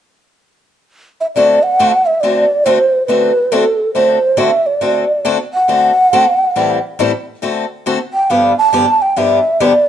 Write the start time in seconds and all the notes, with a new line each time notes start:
1.21 E5
1.35 D3 A3 C4 F#4 A4 D5
1.63 F#5
1.79 D3 A3 C4 F#4 A4
2.06 E5
2.21 D3 A3 C4 F#4 A4 D5
2.65 D3 A3 C4 F#4 A4 C5
3.07 D3 A3 C4 F#4 A4 B4
3.52 D3 A3 C4 F#4 A4
3.94 D3 A3 C4 F#4 A4 C5
4.37 D3 A3 C4 F#4 A4 E5
4.66 D5
4.81 D3 A3 C4 F#4 A4
5.25 D3 A3 C4 F#4 A4
5.54 F#5
5.68 D3 A3 C4 F#4 A4
6.13 D3 A3 C4 F#4 A4
6.56 A2 E3 G3 C4 E4 A4
6.99 A2 E3 G3 C4 E4 A4
7.42 D3 A3 C4 F#4 A4
7.86 D3 A3 C4 F#4 A4
8.13 G5
8.30 G2 D3 F3 B3 D4 G4 F5
8.59 A5
8.73 G2 D3 F3 B3 D4 G4
9.02 G5
9.16 G2 D3 F3 B3 D4 G4 E5
9.60 G2 D3 F3 B3 D4 G4 D5